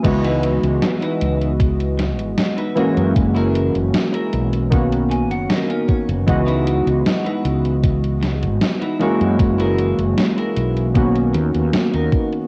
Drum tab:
CC |x---------------|----------------|----------------|----------------|
HH |xxxxxxxxxxxxxxxx|xxxxxxxxxxxxxxxx|xxxxxxxxxxxxxxxx|xxxxxxxxxxxxxxxx|
SD |----o-----o-o---|----o-------o---|----o-----o-o---|----o-------o---|
BD |o-------o-------|o-------o-----o-|o-------o-------|o-------o-----o-|